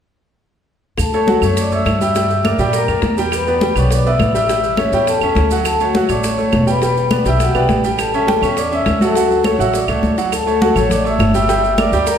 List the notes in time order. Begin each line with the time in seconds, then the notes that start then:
0.98 D2 A4 A5, high bongo, high conga, claves, maracas
1.12 A3 A4 C#5 A5, high bongo, high conga, maracas
1.27 F#3 F#4 F#5, high bongo, high conga, maracas
1.42 F#2 A3 A4 C#5 C#6, high bongo, high conga, claves, maracas
1.57 D6, high bongo, high conga, maracas
1.61 D5
1.71 A3 A4 C#5 E5 E6, high bongo, high conga, maracas
1.86 G2, high bongo, low bongo, high conga, claves, maracas
2.01 G3 G4 E5 G5 E6, high conga, maracas
2.15 G3 G4 G5, high bongo, high conga, maracas
2.30 high bongo, high conga, maracas
2.45 A#3 A#4 D5 D6, high bongo, high conga, claves, maracas
2.59 A#2 G3 G4 G5 D6, high bongo, maracas
2.63 D5
2.73 A#4 A#5, high bongo, high conga, maracas
2.88 F#2 A#3 A#4 D5, high bongo, high conga, claves, maracas
3.02 E2, high bongo, low bongo, high conga, maracas
3.18 G3 G4 G5, high conga, maracas
3.32 B4 B5, high bongo, high conga, claves, maracas
3.47 B3 B4 D5 B5, high bongo, high conga, maracas
3.61 G3 G4 G5, high bongo, high conga, maracas
3.76 B1 B3 B4 C#5 D5 C#6, high bongo, high conga, claves, maracas
3.91 D5 D6, high bongo, high conga, maracas
4.05 B3 B4 D5 E5 E6, high bongo, high conga, maracas
4.19 A1, high bongo, low bongo, high conga, claves, maracas
4.34 G3 G4 E5 G5 E6, maracas
4.49 G3 G4 G5, high bongo, high conga, maracas
4.63 high bongo, high conga, maracas
4.77 C#4 C#5 E5 C#6, high bongo, high conga, claves, maracas
4.92 E2 G3 G4 C#5 G5 C#6, high bongo, maracas
5.07 A4 A5, high bongo, high conga, maracas
5.21 E2 C#4 C#5 E5, high bongo, high conga, claves, maracas
5.35 D2, high bongo, low bongo, high conga, maracas
5.51 F#3 F#4 F#5, high conga, maracas
5.65 A4 A5, high bongo, high conga, claves, maracas
5.80 A3 F#4 A4 C#5 F#5, high bongo, high conga, maracas
5.95 F#3 F#4 F#5, high bongo, high conga, maracas
6.09 A1 A3 A4 C#5 D5 D6, high bongo, high conga, claves, maracas
6.24 C#5 C#6, high bongo, high conga, maracas
6.38 A3 A4 C#5, high bongo, high conga, maracas
6.52 E1, high bongo, low bongo, high conga, claves, maracas
6.67 G3 G4 B4 G5 B5, maracas
6.82 G3 G4 B4 G5 B5, high bongo, high conga, maracas
6.97 high bongo, high conga, maracas
7.11 B3 B4 D5, high bongo, high conga, claves, maracas
7.25 B1 G3 G4 E5 G5 E6, high bongo, maracas
7.40 F#4 F#5, high bongo, high conga, maracas
7.54 B1 B3 G4 B4 D5 G5, high bongo, high conga, claves, maracas
7.69 A1, high bongo, low bongo, high conga, maracas
7.84 G3 G4 G5, high conga, maracas
7.98 A4 A5, high bongo, high conga, claves, maracas
8.13 C#4 A4 C#5 E5 A5, high bongo, high conga, maracas
8.27 G3 G4 G5, high bongo, high conga, maracas
8.42 E2 C#4 C#5 E5 C#6, high bongo, high conga, claves, maracas
8.57 D5 D6, high bongo, high conga, maracas
8.71 C#4 C#5 E5 E6, high bongo, high conga, maracas
8.86 D2, high bongo, low bongo, high conga, claves, maracas
9.01 F#3 F#4 A4 F#5 A5, high conga, maracas
9.15 F#3 F#4 F#5, high bongo, high conga, maracas
9.30 high bongo, high conga, maracas
9.44 A3 A4 C#5 C#6, high bongo, high conga, claves, maracas
9.59 A1 F#3 F#4 E5 F#5 E6, high bongo, maracas
9.73 D5 D6, high bongo, high conga, maracas
9.88 C#2 A3 A4 C#5, high bongo, high conga, claves, maracas
10.03 D2, high bongo, high conga, maracas
10.18 F#3 F#4 F#5, low bongo, high conga, maracas
10.32 A4 A5, high bongo, high conga, claves, maracas
10.47 A3 A4 C#5 A5, high bongo, high conga, maracas
10.61 F#3 F#4 F#5, high bongo, high conga, maracas
10.75 A1 A3 A4 C#5 C#6, high bongo, high conga, low conga, claves, maracas
10.90 D5 D6, high bongo, high conga, low conga, maracas
11.05 A3 A4 C#5 E5 E6, high bongo, high conga, maracas
11.19 G1, high bongo, low bongo, high conga, claves, maracas
11.34 G3 G4 E5 G5 E6, high conga, maracas
11.49 G3 G4 G5, high bongo, maracas
11.63 high bongo, high conga, maracas
11.78 A#3 A#4 D5 D6, high bongo, high conga, claves, maracas
11.92 D2 G3 G4 D5 G5 D6, high bongo, maracas
12.06 A#4 A#5, high bongo, high conga, maracas